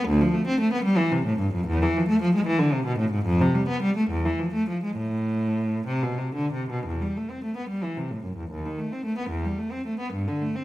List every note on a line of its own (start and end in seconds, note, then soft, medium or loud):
0.08 0.21 D2 medium
0.21 0.34 F3 medium
0.34 0.47 A3 medium
0.47 0.60 C4 medium
0.61 0.73 A3 medium
0.73 0.86 B3 medium
0.85 0.98 G3 medium
0.98 1.12 E3 medium
1.12 1.26 C3 medium
1.25 1.39 A2 medium
1.40 1.54 G2 medium
1.54 1.68 F2 medium
1.67 1.81 E2 medium
1.83 1.96 E3 medium
1.97 2.09 F3 medium
2.08 2.21 A3 medium
2.22 2.34 F3 medium
2.35 2.47 G#3 medium
2.47 2.60 E3 medium
2.59 2.73 D3 medium
2.73 2.86 C3 medium
2.85 2.98 B2 medium
2.99 3.12 A2 medium
3.12 3.25 G#2 medium
3.26 3.39 F2 medium
3.41 3.54 C3 medium
3.55 3.68 G3 medium
3.68 3.81 B3 medium
3.82 3.95 G3 medium
3.97 4.10 A3 medium
4.10 4.23 E2 medium
4.26 4.39 E3 medium
4.39 4.53 F3 medium
4.54 4.68 A3 medium
4.69 4.83 F3 medium
4.84 4.98 G#3 medium
4.97 5.85 A2 medium
5.87 6.02 C3 medium
6.03 6.19 B2 medium
6.18 6.35 C3 medium
6.35 6.52 D3 medium
6.53 6.69 C3 soft
6.70 6.85 B2 medium
6.86 7.01 E2 medium
7.02 7.15 G3 soft
7.17 7.30 A3 soft
7.30 7.44 C4 soft
7.44 7.57 A3 medium
7.57 7.70 B3 soft
7.69 7.83 G3 medium
7.84 7.97 E3 soft
7.97 8.11 C3 soft
8.11 8.24 A2 soft
8.24 8.37 F#2 soft
8.37 8.50 E2 soft
8.51 8.64 D#2 medium
8.66 8.79 D#3 soft
8.79 8.92 A3 soft
8.93 9.05 C4 soft
9.05 9.18 A3 medium
9.18 9.31 B3 soft
9.30 9.43 E2 medium
9.45 9.58 G3 soft
9.59 9.72 A3 soft
9.72 9.85 C4 medium
9.86 10.00 A3 soft
10.00 10.13 B3 soft
10.13 10.27 G2 medium
10.28 10.41 D3 soft
10.42 10.55 A3 medium
10.56 10.64 C4 medium